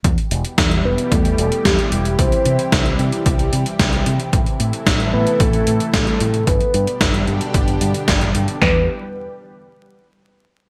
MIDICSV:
0, 0, Header, 1, 5, 480
1, 0, Start_track
1, 0, Key_signature, 1, "minor"
1, 0, Tempo, 535714
1, 40, Time_signature, 4, 2, 24, 8
1, 9579, End_track
2, 0, Start_track
2, 0, Title_t, "Soft synth lead"
2, 0, Program_c, 0, 80
2, 761, Note_on_c, 0, 71, 94
2, 999, Note_on_c, 0, 69, 93
2, 1012, Note_off_c, 0, 71, 0
2, 1474, Note_off_c, 0, 69, 0
2, 1479, Note_on_c, 0, 67, 94
2, 1960, Note_on_c, 0, 72, 110
2, 1973, Note_off_c, 0, 67, 0
2, 2680, Note_off_c, 0, 72, 0
2, 4599, Note_on_c, 0, 71, 109
2, 4837, Note_on_c, 0, 69, 105
2, 4851, Note_off_c, 0, 71, 0
2, 5307, Note_off_c, 0, 69, 0
2, 5313, Note_on_c, 0, 69, 100
2, 5792, Note_on_c, 0, 71, 102
2, 5806, Note_off_c, 0, 69, 0
2, 6516, Note_off_c, 0, 71, 0
2, 7720, Note_on_c, 0, 71, 87
2, 7943, Note_off_c, 0, 71, 0
2, 9579, End_track
3, 0, Start_track
3, 0, Title_t, "Analog synth pad"
3, 0, Program_c, 1, 89
3, 42, Note_on_c, 1, 47, 83
3, 42, Note_on_c, 1, 52, 76
3, 42, Note_on_c, 1, 55, 76
3, 42, Note_on_c, 1, 64, 74
3, 43, Note_on_c, 1, 67, 93
3, 1942, Note_off_c, 1, 47, 0
3, 1942, Note_off_c, 1, 55, 0
3, 1961, Note_on_c, 1, 55, 78
3, 1962, Note_on_c, 1, 48, 85
3, 3845, Note_off_c, 1, 52, 0
3, 3845, Note_off_c, 1, 64, 0
3, 3846, Note_off_c, 1, 67, 0
3, 3861, Note_off_c, 1, 55, 0
3, 3877, Note_on_c, 1, 52, 78
3, 3878, Note_on_c, 1, 57, 75
3, 3879, Note_on_c, 1, 64, 77
3, 3879, Note_on_c, 1, 69, 92
3, 5765, Note_off_c, 1, 48, 0
3, 5779, Note_off_c, 1, 52, 0
3, 5780, Note_off_c, 1, 57, 0
3, 5780, Note_off_c, 1, 64, 0
3, 5780, Note_off_c, 1, 69, 0
3, 5800, Note_on_c, 1, 55, 76
3, 5800, Note_on_c, 1, 67, 91
3, 5801, Note_on_c, 1, 47, 83
3, 5801, Note_on_c, 1, 50, 75
3, 5801, Note_on_c, 1, 62, 77
3, 7701, Note_off_c, 1, 47, 0
3, 7701, Note_off_c, 1, 50, 0
3, 7701, Note_off_c, 1, 55, 0
3, 7701, Note_off_c, 1, 62, 0
3, 7701, Note_off_c, 1, 67, 0
3, 9579, End_track
4, 0, Start_track
4, 0, Title_t, "Fingered electric bass"
4, 0, Program_c, 2, 33
4, 40, Note_on_c, 2, 40, 94
4, 141, Note_off_c, 2, 40, 0
4, 280, Note_on_c, 2, 28, 98
4, 381, Note_off_c, 2, 28, 0
4, 520, Note_on_c, 2, 40, 81
4, 721, Note_off_c, 2, 40, 0
4, 761, Note_on_c, 2, 28, 80
4, 861, Note_off_c, 2, 28, 0
4, 1000, Note_on_c, 2, 40, 98
4, 1201, Note_off_c, 2, 40, 0
4, 1240, Note_on_c, 2, 28, 100
4, 1341, Note_off_c, 2, 28, 0
4, 1481, Note_on_c, 2, 40, 84
4, 1581, Note_off_c, 2, 40, 0
4, 1721, Note_on_c, 2, 28, 85
4, 1921, Note_off_c, 2, 28, 0
4, 1960, Note_on_c, 2, 36, 94
4, 2060, Note_off_c, 2, 36, 0
4, 2201, Note_on_c, 2, 48, 99
4, 2301, Note_off_c, 2, 48, 0
4, 2440, Note_on_c, 2, 36, 81
4, 2641, Note_off_c, 2, 36, 0
4, 2680, Note_on_c, 2, 48, 80
4, 2780, Note_off_c, 2, 48, 0
4, 2920, Note_on_c, 2, 36, 75
4, 3121, Note_off_c, 2, 36, 0
4, 3161, Note_on_c, 2, 48, 96
4, 3261, Note_off_c, 2, 48, 0
4, 3401, Note_on_c, 2, 36, 84
4, 3601, Note_off_c, 2, 36, 0
4, 3641, Note_on_c, 2, 48, 83
4, 3741, Note_off_c, 2, 48, 0
4, 3879, Note_on_c, 2, 33, 96
4, 3980, Note_off_c, 2, 33, 0
4, 4121, Note_on_c, 2, 45, 101
4, 4221, Note_off_c, 2, 45, 0
4, 4360, Note_on_c, 2, 33, 84
4, 4561, Note_off_c, 2, 33, 0
4, 4603, Note_on_c, 2, 45, 83
4, 4702, Note_off_c, 2, 45, 0
4, 4839, Note_on_c, 2, 33, 100
4, 5041, Note_off_c, 2, 33, 0
4, 5082, Note_on_c, 2, 45, 102
4, 5181, Note_off_c, 2, 45, 0
4, 5320, Note_on_c, 2, 33, 89
4, 5421, Note_off_c, 2, 33, 0
4, 5561, Note_on_c, 2, 45, 83
4, 5761, Note_off_c, 2, 45, 0
4, 5799, Note_on_c, 2, 31, 97
4, 5900, Note_off_c, 2, 31, 0
4, 6040, Note_on_c, 2, 43, 102
4, 6141, Note_off_c, 2, 43, 0
4, 6279, Note_on_c, 2, 31, 80
4, 6481, Note_off_c, 2, 31, 0
4, 6520, Note_on_c, 2, 43, 83
4, 6620, Note_off_c, 2, 43, 0
4, 6759, Note_on_c, 2, 31, 75
4, 6960, Note_off_c, 2, 31, 0
4, 6999, Note_on_c, 2, 43, 98
4, 7100, Note_off_c, 2, 43, 0
4, 7240, Note_on_c, 2, 31, 84
4, 7441, Note_off_c, 2, 31, 0
4, 7481, Note_on_c, 2, 43, 88
4, 7581, Note_off_c, 2, 43, 0
4, 7720, Note_on_c, 2, 40, 92
4, 7943, Note_off_c, 2, 40, 0
4, 9579, End_track
5, 0, Start_track
5, 0, Title_t, "Drums"
5, 40, Note_on_c, 9, 36, 115
5, 40, Note_on_c, 9, 42, 92
5, 129, Note_off_c, 9, 36, 0
5, 129, Note_off_c, 9, 42, 0
5, 160, Note_on_c, 9, 42, 38
5, 250, Note_off_c, 9, 42, 0
5, 280, Note_on_c, 9, 42, 65
5, 370, Note_off_c, 9, 42, 0
5, 400, Note_on_c, 9, 42, 41
5, 489, Note_off_c, 9, 42, 0
5, 519, Note_on_c, 9, 38, 117
5, 519, Note_on_c, 9, 42, 93
5, 520, Note_on_c, 9, 36, 116
5, 609, Note_off_c, 9, 38, 0
5, 609, Note_off_c, 9, 42, 0
5, 610, Note_off_c, 9, 36, 0
5, 639, Note_on_c, 9, 42, 41
5, 729, Note_off_c, 9, 42, 0
5, 880, Note_on_c, 9, 42, 39
5, 969, Note_off_c, 9, 42, 0
5, 1000, Note_on_c, 9, 36, 117
5, 1001, Note_on_c, 9, 42, 91
5, 1090, Note_off_c, 9, 36, 0
5, 1090, Note_off_c, 9, 42, 0
5, 1120, Note_on_c, 9, 42, 41
5, 1210, Note_off_c, 9, 42, 0
5, 1240, Note_on_c, 9, 42, 67
5, 1329, Note_off_c, 9, 42, 0
5, 1360, Note_on_c, 9, 42, 40
5, 1450, Note_off_c, 9, 42, 0
5, 1480, Note_on_c, 9, 36, 115
5, 1480, Note_on_c, 9, 38, 114
5, 1480, Note_on_c, 9, 42, 92
5, 1570, Note_off_c, 9, 36, 0
5, 1570, Note_off_c, 9, 38, 0
5, 1570, Note_off_c, 9, 42, 0
5, 1600, Note_on_c, 9, 42, 40
5, 1690, Note_off_c, 9, 42, 0
5, 1720, Note_on_c, 9, 42, 65
5, 1810, Note_off_c, 9, 42, 0
5, 1840, Note_on_c, 9, 42, 39
5, 1930, Note_off_c, 9, 42, 0
5, 1960, Note_on_c, 9, 36, 116
5, 1960, Note_on_c, 9, 42, 92
5, 2050, Note_off_c, 9, 36, 0
5, 2050, Note_off_c, 9, 42, 0
5, 2081, Note_on_c, 9, 42, 39
5, 2170, Note_off_c, 9, 42, 0
5, 2200, Note_on_c, 9, 42, 67
5, 2289, Note_off_c, 9, 42, 0
5, 2319, Note_on_c, 9, 42, 41
5, 2409, Note_off_c, 9, 42, 0
5, 2440, Note_on_c, 9, 36, 122
5, 2440, Note_on_c, 9, 38, 120
5, 2440, Note_on_c, 9, 42, 95
5, 2529, Note_off_c, 9, 38, 0
5, 2529, Note_off_c, 9, 42, 0
5, 2530, Note_off_c, 9, 36, 0
5, 2559, Note_on_c, 9, 42, 41
5, 2649, Note_off_c, 9, 42, 0
5, 2680, Note_on_c, 9, 42, 36
5, 2769, Note_off_c, 9, 42, 0
5, 2799, Note_on_c, 9, 42, 40
5, 2889, Note_off_c, 9, 42, 0
5, 2919, Note_on_c, 9, 42, 96
5, 2920, Note_on_c, 9, 36, 120
5, 3009, Note_off_c, 9, 36, 0
5, 3009, Note_off_c, 9, 42, 0
5, 3039, Note_on_c, 9, 42, 41
5, 3129, Note_off_c, 9, 42, 0
5, 3160, Note_on_c, 9, 42, 70
5, 3250, Note_off_c, 9, 42, 0
5, 3280, Note_on_c, 9, 42, 40
5, 3369, Note_off_c, 9, 42, 0
5, 3400, Note_on_c, 9, 36, 119
5, 3400, Note_on_c, 9, 38, 119
5, 3400, Note_on_c, 9, 42, 92
5, 3489, Note_off_c, 9, 36, 0
5, 3490, Note_off_c, 9, 38, 0
5, 3490, Note_off_c, 9, 42, 0
5, 3519, Note_on_c, 9, 42, 40
5, 3609, Note_off_c, 9, 42, 0
5, 3640, Note_on_c, 9, 42, 65
5, 3730, Note_off_c, 9, 42, 0
5, 3760, Note_on_c, 9, 42, 40
5, 3850, Note_off_c, 9, 42, 0
5, 3880, Note_on_c, 9, 36, 123
5, 3880, Note_on_c, 9, 42, 93
5, 3969, Note_off_c, 9, 36, 0
5, 3970, Note_off_c, 9, 42, 0
5, 4000, Note_on_c, 9, 42, 39
5, 4090, Note_off_c, 9, 42, 0
5, 4120, Note_on_c, 9, 42, 66
5, 4210, Note_off_c, 9, 42, 0
5, 4240, Note_on_c, 9, 42, 40
5, 4329, Note_off_c, 9, 42, 0
5, 4359, Note_on_c, 9, 36, 123
5, 4359, Note_on_c, 9, 38, 125
5, 4359, Note_on_c, 9, 42, 94
5, 4449, Note_off_c, 9, 36, 0
5, 4449, Note_off_c, 9, 38, 0
5, 4449, Note_off_c, 9, 42, 0
5, 4479, Note_on_c, 9, 42, 40
5, 4569, Note_off_c, 9, 42, 0
5, 4719, Note_on_c, 9, 42, 38
5, 4808, Note_off_c, 9, 42, 0
5, 4838, Note_on_c, 9, 42, 92
5, 4839, Note_on_c, 9, 36, 121
5, 4928, Note_off_c, 9, 42, 0
5, 4929, Note_off_c, 9, 36, 0
5, 4958, Note_on_c, 9, 42, 39
5, 5048, Note_off_c, 9, 42, 0
5, 5079, Note_on_c, 9, 42, 67
5, 5169, Note_off_c, 9, 42, 0
5, 5200, Note_on_c, 9, 42, 39
5, 5290, Note_off_c, 9, 42, 0
5, 5319, Note_on_c, 9, 36, 125
5, 5319, Note_on_c, 9, 38, 121
5, 5319, Note_on_c, 9, 42, 91
5, 5409, Note_off_c, 9, 36, 0
5, 5409, Note_off_c, 9, 38, 0
5, 5409, Note_off_c, 9, 42, 0
5, 5439, Note_on_c, 9, 42, 39
5, 5529, Note_off_c, 9, 42, 0
5, 5559, Note_on_c, 9, 42, 66
5, 5649, Note_off_c, 9, 42, 0
5, 5679, Note_on_c, 9, 42, 38
5, 5768, Note_off_c, 9, 42, 0
5, 5799, Note_on_c, 9, 36, 120
5, 5799, Note_on_c, 9, 42, 90
5, 5888, Note_off_c, 9, 36, 0
5, 5888, Note_off_c, 9, 42, 0
5, 5918, Note_on_c, 9, 42, 38
5, 6008, Note_off_c, 9, 42, 0
5, 6039, Note_on_c, 9, 42, 64
5, 6128, Note_off_c, 9, 42, 0
5, 6159, Note_on_c, 9, 42, 38
5, 6249, Note_off_c, 9, 42, 0
5, 6278, Note_on_c, 9, 38, 121
5, 6278, Note_on_c, 9, 42, 88
5, 6279, Note_on_c, 9, 36, 123
5, 6368, Note_off_c, 9, 36, 0
5, 6368, Note_off_c, 9, 38, 0
5, 6368, Note_off_c, 9, 42, 0
5, 6398, Note_on_c, 9, 42, 38
5, 6488, Note_off_c, 9, 42, 0
5, 6518, Note_on_c, 9, 42, 34
5, 6608, Note_off_c, 9, 42, 0
5, 6639, Note_on_c, 9, 42, 38
5, 6728, Note_off_c, 9, 42, 0
5, 6758, Note_on_c, 9, 42, 90
5, 6759, Note_on_c, 9, 36, 122
5, 6848, Note_off_c, 9, 36, 0
5, 6848, Note_off_c, 9, 42, 0
5, 6879, Note_on_c, 9, 42, 37
5, 6969, Note_off_c, 9, 42, 0
5, 6999, Note_on_c, 9, 42, 64
5, 7088, Note_off_c, 9, 42, 0
5, 7118, Note_on_c, 9, 42, 39
5, 7208, Note_off_c, 9, 42, 0
5, 7238, Note_on_c, 9, 38, 120
5, 7238, Note_on_c, 9, 42, 89
5, 7239, Note_on_c, 9, 36, 120
5, 7328, Note_off_c, 9, 38, 0
5, 7328, Note_off_c, 9, 42, 0
5, 7329, Note_off_c, 9, 36, 0
5, 7358, Note_on_c, 9, 42, 38
5, 7447, Note_off_c, 9, 42, 0
5, 7479, Note_on_c, 9, 42, 64
5, 7568, Note_off_c, 9, 42, 0
5, 7598, Note_on_c, 9, 42, 38
5, 7687, Note_off_c, 9, 42, 0
5, 7719, Note_on_c, 9, 38, 105
5, 7720, Note_on_c, 9, 36, 104
5, 7809, Note_off_c, 9, 36, 0
5, 7809, Note_off_c, 9, 38, 0
5, 9579, End_track
0, 0, End_of_file